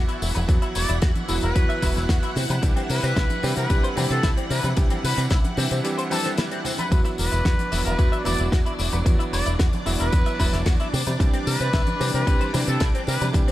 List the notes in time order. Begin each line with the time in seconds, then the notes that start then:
Already playing: E3 F#3 B3 E4 F#4 F#5
0.08 E4, closed hi-hat, tambourine
0.22 E1 E4, open hi-hat, tambourine
0.35 E1 B3, closed hi-hat, tambourine, high conga, high woodblock
0.48 E2 E3 F#3 B3 E4 F#4, kick, closed hi-hat, tambourine
0.62 E4, closed hi-hat, tambourine
0.75 E1 D5, open hi-hat, tambourine, high woodblock
0.89 E1 E4, closed hi-hat, tambourine
1.02 E2 F#4, kick, snare, closed hi-hat, tambourine
1.15 closed hi-hat, tambourine, high conga
1.28 E1 E3 F#3 B3 E4 F#4, open hi-hat, tambourine
1.41 E1 E4 B4, closed hi-hat, tambourine
1.55 E2 E3 F#3 B3 E4 F#4, kick, closed hi-hat, tambourine
1.69 E5, closed hi-hat, tambourine
1.82 E1 E3 F#3 B3 E4 F#4, kick, open hi-hat, tambourine, high conga, high woodblock
1.96 E1 E4, snare, closed hi-hat, tambourine
2.09 E2 F#4, kick, snare, closed hi-hat, tambourine
2.23 E4, closed hi-hat, tambourine
2.36 C3 C4, open hi-hat, tambourine, low conga
2.49 C3 G3, closed hi-hat, tambourine, high conga, high woodblock
2.62 C2 E3 G3 C4 D4 G4, kick, closed hi-hat, tambourine
2.76 C4, closed hi-hat, tambourine
2.89 C3 B4, open hi-hat, tambourine
3.03 C3 C4, closed hi-hat, tambourine
3.16 C2 E4, kick, snare, closed hi-hat, tambourine
3.29 closed hi-hat, tambourine, high conga
3.43 C3 E3 G3 C4 D4 G4, open hi-hat, tambourine
3.56 C3 C4 B4, closed hi-hat, tambourine
3.69 C2 E3 G3 C4 D4 G4, kick, closed hi-hat, tambourine
3.83 C5, closed hi-hat, tambourine
3.96 C3 E3 G3 C4 D4 G4, open hi-hat, tambourine, high conga, low conga, high woodblock
4.10 C3 C4 A4, closed hi-hat, tambourine
4.23 C2 E4, kick, snare, closed hi-hat, tambourine
4.37 C4, closed hi-hat, tambourine
4.50 C3 C4 B4, open hi-hat, tambourine
4.63 C3 G3, closed hi-hat, tambourine, high conga, high woodblock
4.76 C2 E3 G3 C4 D4 G4, kick, closed hi-hat, tambourine
4.90 C4, closed hi-hat, tambourine
5.04 C3 B4, open hi-hat, tambourine
5.17 C3 C4, closed hi-hat, tambourine
5.19 tambourine
5.30 C2 E4, kick, snare, closed hi-hat, tambourine
5.32 tambourine
5.44 closed hi-hat, tambourine, high conga
5.57 C3 E3 G3 C4 D4 G4, open hi-hat, tambourine
5.59 tambourine
5.71 C3 C4, closed hi-hat, tambourine
5.84 E3 G3 C4 D4 G4, closed hi-hat, tambourine
5.98 C5, closed hi-hat, tambourine
6.10 E3 G3 C4 D4 G4 A4, open hi-hat, tambourine, high conga, high woodblock
6.13 tambourine
6.25 C4, snare, closed hi-hat, tambourine
6.38 E4, snare, closed hi-hat, tambourine
6.51 C4, closed hi-hat, tambourine
6.65 C4, open hi-hat, tambourine, low conga
6.78 G3 B4, closed hi-hat, tambourine, high conga, high woodblock
6.91 E2 E3 F#3 B3 D4 E4 F#4 B4 D5, kick, closed hi-hat, tambourine
7.04 E4, closed hi-hat, tambourine
7.18 E1 B4, open hi-hat, tambourine
7.31 E1 E4, closed hi-hat, tambourine
7.33 tambourine
7.45 E2 F#4, kick, snare, closed hi-hat, tambourine
7.59 closed hi-hat, tambourine, high conga
7.72 E1 E3 F#3 B3 E4 F#4, open hi-hat, tambourine
7.85 E1 E4 B4, closed hi-hat, tambourine
7.98 E2 E3 F#3 B3 E4 F#4, kick, closed hi-hat, tambourine
8.12 E5, closed hi-hat, tambourine
8.24 E1 E3 F#3 B3 E4 F#4 D5, open hi-hat, tambourine, high conga, low conga, high woodblock
8.38 E1 E4, closed hi-hat, tambourine
8.52 E2 F#4, kick, snare, closed hi-hat, tambourine
8.66 E4, closed hi-hat, tambourine
8.79 E1 E4, open hi-hat, tambourine
8.92 E1 B3, closed hi-hat, tambourine, high conga, high woodblock
9.05 E2 E3 F#3 B3 E4 F#4, kick, closed hi-hat, tambourine
9.19 E4, closed hi-hat, tambourine
9.33 E1 D5, open hi-hat, tambourine, high woodblock
9.46 E1 E4, closed hi-hat, tambourine
9.59 E2 F#4, kick, snare, closed hi-hat, tambourine
9.73 closed hi-hat, tambourine, high conga
9.86 E1 E3 F#3 B3 E4 F#4, open hi-hat, tambourine
9.99 E1 E4 B4, closed hi-hat, tambourine
10.12 E2 E3 F#3 B3 E4 F#4, kick, closed hi-hat, tambourine
10.26 E5, closed hi-hat, tambourine
10.39 E1 E3 F#3 B3 E4 F#4, kick, open hi-hat, tambourine, high conga, high woodblock
10.53 E1 E4, snare, closed hi-hat, tambourine
10.66 E2 F#4, kick, snare, closed hi-hat, tambourine
10.80 E4, closed hi-hat, tambourine
10.93 C3 C4, open hi-hat, tambourine, low conga
11.06 C3 G3, closed hi-hat, tambourine, high conga, high woodblock
11.19 C2 E3 G3 C4 D4 G4, kick, closed hi-hat, tambourine
11.33 C4, closed hi-hat, tambourine
11.47 C3 B4, open hi-hat, tambourine
11.60 C3 C4, closed hi-hat, tambourine
11.62 tambourine
11.73 C2 E4, kick, snare, closed hi-hat, tambourine
11.87 closed hi-hat, tambourine, high conga
12.00 C3 E3 G3 C4 D4 G4, open hi-hat, tambourine
12.14 C3 C4 B4, closed hi-hat, tambourine
12.26 C2 E3 G3 C4 D4 G4, kick, closed hi-hat, tambourine
12.41 C5, closed hi-hat, tambourine
12.53 C3 E3 G3 C4 D4 G4, open hi-hat, tambourine, high conga, low conga, high woodblock
12.67 C3 C4 A4, closed hi-hat, tambourine
12.80 C2 E4, kick, snare, closed hi-hat, tambourine
12.94 C4, closed hi-hat, tambourine
13.07 C3 C4 B4, open hi-hat, tambourine
13.21 C3 G3, closed hi-hat, tambourine, high conga, high woodblock
13.33 C2 E3 G3 C4 D4 G4, kick, closed hi-hat, tambourine
13.35 tambourine
13.48 C4, closed hi-hat, tambourine